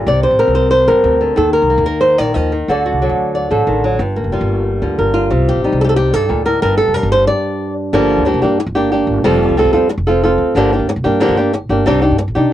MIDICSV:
0, 0, Header, 1, 4, 480
1, 0, Start_track
1, 0, Key_signature, -2, "minor"
1, 0, Tempo, 327869
1, 85, Time_signature, 4, 2, 24, 8
1, 18350, End_track
2, 0, Start_track
2, 0, Title_t, "Nylon-string guitar"
2, 0, Program_c, 0, 24
2, 0, Note_on_c, 0, 55, 59
2, 99, Note_on_c, 0, 48, 70
2, 112, Note_on_c, 0, 74, 91
2, 333, Note_off_c, 0, 74, 0
2, 338, Note_on_c, 0, 72, 77
2, 570, Note_on_c, 0, 70, 83
2, 572, Note_off_c, 0, 55, 0
2, 577, Note_on_c, 0, 60, 55
2, 784, Note_off_c, 0, 72, 0
2, 802, Note_on_c, 0, 72, 84
2, 1018, Note_off_c, 0, 72, 0
2, 1035, Note_on_c, 0, 72, 97
2, 1266, Note_off_c, 0, 70, 0
2, 1284, Note_on_c, 0, 70, 91
2, 1293, Note_on_c, 0, 43, 62
2, 1294, Note_off_c, 0, 48, 0
2, 1526, Note_on_c, 0, 48, 65
2, 1762, Note_off_c, 0, 72, 0
2, 1763, Note_off_c, 0, 48, 0
2, 1769, Note_on_c, 0, 50, 60
2, 1985, Note_off_c, 0, 60, 0
2, 1986, Note_off_c, 0, 43, 0
2, 1992, Note_on_c, 0, 51, 72
2, 2006, Note_off_c, 0, 70, 0
2, 2009, Note_off_c, 0, 50, 0
2, 2014, Note_on_c, 0, 69, 90
2, 2237, Note_off_c, 0, 69, 0
2, 2243, Note_on_c, 0, 70, 90
2, 2488, Note_on_c, 0, 58, 59
2, 2704, Note_off_c, 0, 70, 0
2, 2722, Note_on_c, 0, 70, 87
2, 2940, Note_on_c, 0, 72, 100
2, 3178, Note_off_c, 0, 51, 0
2, 3195, Note_on_c, 0, 51, 56
2, 3199, Note_off_c, 0, 72, 0
2, 3199, Note_on_c, 0, 74, 97
2, 3432, Note_off_c, 0, 74, 0
2, 3432, Note_on_c, 0, 75, 92
2, 3436, Note_off_c, 0, 58, 0
2, 3442, Note_on_c, 0, 53, 61
2, 3446, Note_off_c, 0, 70, 0
2, 3677, Note_off_c, 0, 51, 0
2, 3686, Note_off_c, 0, 53, 0
2, 3695, Note_on_c, 0, 51, 63
2, 3921, Note_off_c, 0, 75, 0
2, 3932, Note_off_c, 0, 51, 0
2, 3943, Note_on_c, 0, 50, 69
2, 3950, Note_on_c, 0, 66, 63
2, 3958, Note_on_c, 0, 69, 61
2, 3968, Note_on_c, 0, 74, 65
2, 4168, Note_off_c, 0, 66, 0
2, 4185, Note_on_c, 0, 66, 56
2, 4408, Note_off_c, 0, 69, 0
2, 4421, Note_on_c, 0, 54, 56
2, 4428, Note_on_c, 0, 69, 52
2, 4889, Note_off_c, 0, 74, 0
2, 4906, Note_on_c, 0, 74, 58
2, 5121, Note_off_c, 0, 50, 0
2, 5128, Note_off_c, 0, 69, 0
2, 5138, Note_on_c, 0, 50, 64
2, 5146, Note_on_c, 0, 69, 55
2, 5370, Note_off_c, 0, 54, 0
2, 5376, Note_on_c, 0, 51, 61
2, 5613, Note_off_c, 0, 51, 0
2, 5625, Note_on_c, 0, 54, 63
2, 5826, Note_off_c, 0, 50, 0
2, 5830, Note_off_c, 0, 66, 0
2, 5830, Note_off_c, 0, 69, 0
2, 5830, Note_off_c, 0, 74, 0
2, 5856, Note_on_c, 0, 43, 71
2, 5858, Note_off_c, 0, 54, 0
2, 6094, Note_on_c, 0, 58, 45
2, 6328, Note_on_c, 0, 55, 60
2, 6345, Note_on_c, 0, 65, 46
2, 7043, Note_off_c, 0, 65, 0
2, 7050, Note_on_c, 0, 50, 63
2, 7061, Note_on_c, 0, 65, 47
2, 7296, Note_on_c, 0, 70, 50
2, 7499, Note_off_c, 0, 65, 0
2, 7517, Note_on_c, 0, 65, 91
2, 7741, Note_off_c, 0, 50, 0
2, 7744, Note_off_c, 0, 70, 0
2, 7761, Note_on_c, 0, 48, 74
2, 7772, Note_off_c, 0, 58, 0
2, 7773, Note_off_c, 0, 43, 0
2, 8026, Note_on_c, 0, 67, 81
2, 8244, Note_off_c, 0, 65, 0
2, 8247, Note_off_c, 0, 55, 0
2, 8253, Note_on_c, 0, 55, 59
2, 8259, Note_on_c, 0, 63, 48
2, 8496, Note_off_c, 0, 67, 0
2, 8502, Note_on_c, 0, 69, 89
2, 8545, Note_off_c, 0, 69, 0
2, 8551, Note_on_c, 0, 67, 78
2, 8611, Note_off_c, 0, 67, 0
2, 8619, Note_on_c, 0, 69, 85
2, 8720, Note_off_c, 0, 69, 0
2, 8726, Note_on_c, 0, 67, 97
2, 8966, Note_off_c, 0, 48, 0
2, 8972, Note_on_c, 0, 43, 59
2, 8980, Note_off_c, 0, 67, 0
2, 8980, Note_on_c, 0, 69, 96
2, 9201, Note_off_c, 0, 43, 0
2, 9207, Note_on_c, 0, 46, 67
2, 9440, Note_off_c, 0, 46, 0
2, 9445, Note_off_c, 0, 69, 0
2, 9446, Note_on_c, 0, 45, 62
2, 9451, Note_on_c, 0, 70, 91
2, 9662, Note_off_c, 0, 55, 0
2, 9666, Note_off_c, 0, 63, 0
2, 9671, Note_off_c, 0, 70, 0
2, 9685, Note_off_c, 0, 45, 0
2, 9691, Note_on_c, 0, 43, 73
2, 9692, Note_on_c, 0, 70, 97
2, 9913, Note_off_c, 0, 70, 0
2, 9919, Note_on_c, 0, 69, 92
2, 10163, Note_off_c, 0, 69, 0
2, 10163, Note_on_c, 0, 70, 91
2, 10181, Note_on_c, 0, 55, 61
2, 10406, Note_off_c, 0, 70, 0
2, 10424, Note_on_c, 0, 72, 103
2, 10626, Note_off_c, 0, 55, 0
2, 10646, Note_off_c, 0, 72, 0
2, 10652, Note_on_c, 0, 74, 100
2, 11320, Note_off_c, 0, 74, 0
2, 11614, Note_on_c, 0, 50, 76
2, 11624, Note_on_c, 0, 53, 81
2, 11625, Note_on_c, 0, 58, 86
2, 11635, Note_on_c, 0, 62, 82
2, 11642, Note_on_c, 0, 67, 95
2, 12064, Note_off_c, 0, 53, 0
2, 12077, Note_off_c, 0, 58, 0
2, 12081, Note_off_c, 0, 50, 0
2, 12081, Note_off_c, 0, 62, 0
2, 12081, Note_on_c, 0, 53, 56
2, 12089, Note_off_c, 0, 67, 0
2, 12095, Note_on_c, 0, 58, 69
2, 12098, Note_on_c, 0, 62, 66
2, 12107, Note_on_c, 0, 67, 69
2, 12308, Note_off_c, 0, 67, 0
2, 12315, Note_off_c, 0, 53, 0
2, 12321, Note_off_c, 0, 58, 0
2, 12323, Note_off_c, 0, 62, 0
2, 12326, Note_on_c, 0, 67, 61
2, 12341, Note_on_c, 0, 62, 57
2, 12353, Note_on_c, 0, 58, 49
2, 12557, Note_off_c, 0, 67, 0
2, 12564, Note_off_c, 0, 62, 0
2, 12568, Note_off_c, 0, 43, 0
2, 12570, Note_off_c, 0, 58, 0
2, 12813, Note_on_c, 0, 67, 60
2, 12825, Note_on_c, 0, 62, 50
2, 12835, Note_on_c, 0, 58, 51
2, 13040, Note_off_c, 0, 67, 0
2, 13046, Note_off_c, 0, 62, 0
2, 13051, Note_off_c, 0, 58, 0
2, 13057, Note_on_c, 0, 67, 56
2, 13070, Note_on_c, 0, 62, 54
2, 13079, Note_on_c, 0, 58, 46
2, 13521, Note_off_c, 0, 67, 0
2, 13528, Note_off_c, 0, 62, 0
2, 13532, Note_on_c, 0, 53, 82
2, 13532, Note_on_c, 0, 55, 86
2, 13533, Note_off_c, 0, 58, 0
2, 13540, Note_on_c, 0, 60, 78
2, 13542, Note_on_c, 0, 65, 95
2, 13549, Note_on_c, 0, 69, 91
2, 13999, Note_off_c, 0, 53, 0
2, 13999, Note_off_c, 0, 55, 0
2, 14003, Note_off_c, 0, 60, 0
2, 14004, Note_off_c, 0, 65, 0
2, 14007, Note_off_c, 0, 69, 0
2, 14014, Note_on_c, 0, 55, 65
2, 14025, Note_on_c, 0, 60, 72
2, 14039, Note_on_c, 0, 65, 68
2, 14040, Note_on_c, 0, 69, 77
2, 14225, Note_off_c, 0, 69, 0
2, 14238, Note_off_c, 0, 65, 0
2, 14240, Note_off_c, 0, 55, 0
2, 14242, Note_on_c, 0, 69, 68
2, 14246, Note_off_c, 0, 60, 0
2, 14255, Note_on_c, 0, 65, 54
2, 14272, Note_on_c, 0, 60, 49
2, 14474, Note_off_c, 0, 69, 0
2, 14476, Note_off_c, 0, 60, 0
2, 14480, Note_off_c, 0, 65, 0
2, 14741, Note_on_c, 0, 69, 59
2, 14757, Note_on_c, 0, 65, 55
2, 14777, Note_on_c, 0, 60, 48
2, 14963, Note_off_c, 0, 69, 0
2, 14971, Note_off_c, 0, 65, 0
2, 14981, Note_off_c, 0, 60, 0
2, 14985, Note_on_c, 0, 69, 61
2, 14998, Note_on_c, 0, 65, 56
2, 15012, Note_on_c, 0, 60, 48
2, 15445, Note_off_c, 0, 69, 0
2, 15452, Note_off_c, 0, 65, 0
2, 15457, Note_on_c, 0, 50, 82
2, 15459, Note_off_c, 0, 60, 0
2, 15469, Note_on_c, 0, 53, 80
2, 15473, Note_on_c, 0, 58, 87
2, 15478, Note_on_c, 0, 62, 95
2, 15483, Note_on_c, 0, 67, 88
2, 15681, Note_off_c, 0, 50, 0
2, 15687, Note_off_c, 0, 53, 0
2, 15688, Note_off_c, 0, 67, 0
2, 15689, Note_off_c, 0, 58, 0
2, 15692, Note_off_c, 0, 62, 0
2, 15706, Note_on_c, 0, 67, 55
2, 15717, Note_on_c, 0, 62, 52
2, 15728, Note_on_c, 0, 58, 50
2, 15926, Note_off_c, 0, 67, 0
2, 15929, Note_off_c, 0, 58, 0
2, 15931, Note_off_c, 0, 62, 0
2, 16165, Note_on_c, 0, 67, 58
2, 16175, Note_on_c, 0, 62, 59
2, 16189, Note_on_c, 0, 58, 51
2, 16395, Note_off_c, 0, 67, 0
2, 16400, Note_off_c, 0, 62, 0
2, 16402, Note_off_c, 0, 58, 0
2, 16403, Note_on_c, 0, 50, 84
2, 16409, Note_on_c, 0, 53, 92
2, 16420, Note_on_c, 0, 58, 92
2, 16420, Note_on_c, 0, 62, 89
2, 16430, Note_on_c, 0, 67, 97
2, 16632, Note_off_c, 0, 67, 0
2, 16634, Note_off_c, 0, 50, 0
2, 16637, Note_off_c, 0, 53, 0
2, 16643, Note_off_c, 0, 58, 0
2, 16643, Note_off_c, 0, 62, 0
2, 16649, Note_on_c, 0, 67, 63
2, 16668, Note_on_c, 0, 62, 55
2, 16675, Note_on_c, 0, 58, 51
2, 16878, Note_off_c, 0, 62, 0
2, 16878, Note_off_c, 0, 67, 0
2, 16880, Note_off_c, 0, 58, 0
2, 17130, Note_on_c, 0, 67, 52
2, 17138, Note_on_c, 0, 62, 51
2, 17155, Note_on_c, 0, 58, 44
2, 17358, Note_off_c, 0, 67, 0
2, 17361, Note_on_c, 0, 48, 84
2, 17362, Note_off_c, 0, 62, 0
2, 17370, Note_off_c, 0, 58, 0
2, 17376, Note_on_c, 0, 55, 89
2, 17376, Note_on_c, 0, 63, 92
2, 17384, Note_on_c, 0, 62, 91
2, 17385, Note_on_c, 0, 67, 95
2, 17575, Note_off_c, 0, 67, 0
2, 17584, Note_off_c, 0, 62, 0
2, 17593, Note_off_c, 0, 63, 0
2, 17593, Note_on_c, 0, 67, 57
2, 17594, Note_off_c, 0, 48, 0
2, 17602, Note_off_c, 0, 55, 0
2, 17602, Note_on_c, 0, 62, 58
2, 17611, Note_on_c, 0, 63, 46
2, 17824, Note_off_c, 0, 62, 0
2, 17827, Note_off_c, 0, 63, 0
2, 17827, Note_off_c, 0, 67, 0
2, 18080, Note_on_c, 0, 67, 59
2, 18097, Note_on_c, 0, 62, 58
2, 18111, Note_on_c, 0, 63, 49
2, 18315, Note_off_c, 0, 67, 0
2, 18323, Note_off_c, 0, 62, 0
2, 18330, Note_off_c, 0, 63, 0
2, 18350, End_track
3, 0, Start_track
3, 0, Title_t, "Upright bass"
3, 0, Program_c, 1, 32
3, 92, Note_on_c, 1, 36, 101
3, 422, Note_off_c, 1, 36, 0
3, 448, Note_on_c, 1, 33, 76
3, 669, Note_off_c, 1, 33, 0
3, 693, Note_on_c, 1, 36, 84
3, 1245, Note_off_c, 1, 36, 0
3, 1290, Note_on_c, 1, 43, 80
3, 1511, Note_off_c, 1, 43, 0
3, 1518, Note_on_c, 1, 38, 88
3, 1966, Note_off_c, 1, 38, 0
3, 2006, Note_on_c, 1, 39, 98
3, 2340, Note_off_c, 1, 39, 0
3, 2370, Note_on_c, 1, 36, 77
3, 2591, Note_off_c, 1, 36, 0
3, 2603, Note_on_c, 1, 39, 94
3, 3160, Note_off_c, 1, 39, 0
3, 3210, Note_on_c, 1, 34, 80
3, 3432, Note_off_c, 1, 34, 0
3, 3455, Note_on_c, 1, 39, 85
3, 3896, Note_off_c, 1, 39, 0
3, 3930, Note_on_c, 1, 38, 92
3, 4263, Note_off_c, 1, 38, 0
3, 4284, Note_on_c, 1, 36, 73
3, 4509, Note_off_c, 1, 36, 0
3, 4531, Note_on_c, 1, 38, 88
3, 5085, Note_off_c, 1, 38, 0
3, 5132, Note_on_c, 1, 33, 81
3, 5353, Note_off_c, 1, 33, 0
3, 5372, Note_on_c, 1, 33, 89
3, 5815, Note_off_c, 1, 33, 0
3, 5844, Note_on_c, 1, 31, 100
3, 6180, Note_off_c, 1, 31, 0
3, 6208, Note_on_c, 1, 29, 72
3, 6431, Note_off_c, 1, 29, 0
3, 6451, Note_on_c, 1, 31, 92
3, 7005, Note_off_c, 1, 31, 0
3, 7051, Note_on_c, 1, 38, 77
3, 7273, Note_off_c, 1, 38, 0
3, 7295, Note_on_c, 1, 31, 90
3, 7736, Note_off_c, 1, 31, 0
3, 7772, Note_on_c, 1, 36, 100
3, 8104, Note_off_c, 1, 36, 0
3, 8133, Note_on_c, 1, 33, 75
3, 8353, Note_off_c, 1, 33, 0
3, 8376, Note_on_c, 1, 36, 92
3, 8927, Note_off_c, 1, 36, 0
3, 8978, Note_on_c, 1, 43, 80
3, 9196, Note_off_c, 1, 43, 0
3, 9214, Note_on_c, 1, 38, 89
3, 9655, Note_off_c, 1, 38, 0
3, 9698, Note_on_c, 1, 31, 95
3, 10026, Note_off_c, 1, 31, 0
3, 10066, Note_on_c, 1, 29, 73
3, 10280, Note_off_c, 1, 29, 0
3, 10294, Note_on_c, 1, 31, 89
3, 10624, Note_off_c, 1, 31, 0
3, 11614, Note_on_c, 1, 31, 86
3, 11943, Note_off_c, 1, 31, 0
3, 11973, Note_on_c, 1, 38, 78
3, 12192, Note_off_c, 1, 38, 0
3, 12211, Note_on_c, 1, 29, 86
3, 12320, Note_off_c, 1, 29, 0
3, 12333, Note_on_c, 1, 43, 82
3, 12552, Note_off_c, 1, 43, 0
3, 12687, Note_on_c, 1, 31, 91
3, 13240, Note_off_c, 1, 31, 0
3, 13281, Note_on_c, 1, 31, 87
3, 13505, Note_off_c, 1, 31, 0
3, 13528, Note_on_c, 1, 29, 93
3, 13859, Note_off_c, 1, 29, 0
3, 13886, Note_on_c, 1, 36, 79
3, 14107, Note_off_c, 1, 36, 0
3, 14130, Note_on_c, 1, 38, 84
3, 14238, Note_off_c, 1, 38, 0
3, 14247, Note_on_c, 1, 41, 82
3, 14468, Note_off_c, 1, 41, 0
3, 14605, Note_on_c, 1, 29, 87
3, 15159, Note_off_c, 1, 29, 0
3, 15196, Note_on_c, 1, 38, 83
3, 15421, Note_off_c, 1, 38, 0
3, 15442, Note_on_c, 1, 31, 89
3, 15775, Note_off_c, 1, 31, 0
3, 15802, Note_on_c, 1, 38, 80
3, 16024, Note_off_c, 1, 38, 0
3, 16046, Note_on_c, 1, 29, 87
3, 16156, Note_off_c, 1, 29, 0
3, 16167, Note_on_c, 1, 43, 91
3, 16388, Note_off_c, 1, 43, 0
3, 16524, Note_on_c, 1, 31, 91
3, 17079, Note_off_c, 1, 31, 0
3, 17120, Note_on_c, 1, 31, 91
3, 17344, Note_off_c, 1, 31, 0
3, 17370, Note_on_c, 1, 36, 92
3, 17701, Note_off_c, 1, 36, 0
3, 17729, Note_on_c, 1, 43, 79
3, 17950, Note_off_c, 1, 43, 0
3, 17972, Note_on_c, 1, 33, 85
3, 18081, Note_off_c, 1, 33, 0
3, 18093, Note_on_c, 1, 48, 87
3, 18202, Note_off_c, 1, 48, 0
3, 18350, End_track
4, 0, Start_track
4, 0, Title_t, "Muted nylon-string guitar strokes"
4, 12588, Note_on_c, 9, 29, 73
4, 12734, Note_off_c, 9, 29, 0
4, 14484, Note_on_c, 9, 29, 68
4, 14630, Note_off_c, 9, 29, 0
4, 15941, Note_on_c, 9, 29, 80
4, 16088, Note_off_c, 9, 29, 0
4, 16887, Note_on_c, 9, 29, 81
4, 17033, Note_off_c, 9, 29, 0
4, 17835, Note_on_c, 9, 29, 78
4, 17982, Note_off_c, 9, 29, 0
4, 18350, End_track
0, 0, End_of_file